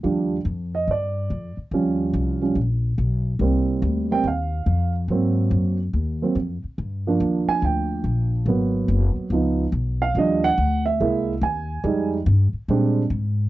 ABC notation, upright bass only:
X:1
M:4/4
L:1/8
Q:"Swing" 1/4=142
K:Eb
V:1 name="Upright bass" clef=bass
E,,2 F,,2 G,,2 F,, z | E,,2 C,,2 B,,,2 _C,,2 | C,,2 D,,2 E,,2 F,,2 | A,,2 _G,,2 E,,2 F,, z |
G,,2 E,, z D,,2 B,,,2 | A,,,2 _G,,, z _D,,2 _C,,2 | E,,2 D,,2 C,,2 ^D,,2 | F,,2 G,, z B,,2 A,,2 |]